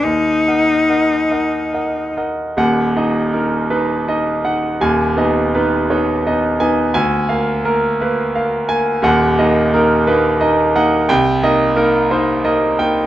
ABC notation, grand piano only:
X:1
M:6/8
L:1/8
Q:3/8=56
K:Ebm
V:1 name="Grand piano"
E,, [Beg] [Beg] [Beg] [Beg] [Beg] | [E,,,E,,g] [Ee] [EB] [Ec] [Ee] [Eg] | [E,,,E,,a] [CEe] [CEc] [CEd] [CEe] [CEa] | [=D,,a] [B,f] [B,B] [B,c] [B,f] [B,a] |
[E,,,E,,g] [B,Ee] [B,EB] [B,Ec] [B,Ee] [B,Eg] | [K:Cdor] [C,,g] [B,Ee] [B,EB] [B,Ec] [B,Ee] [B,Eg] |]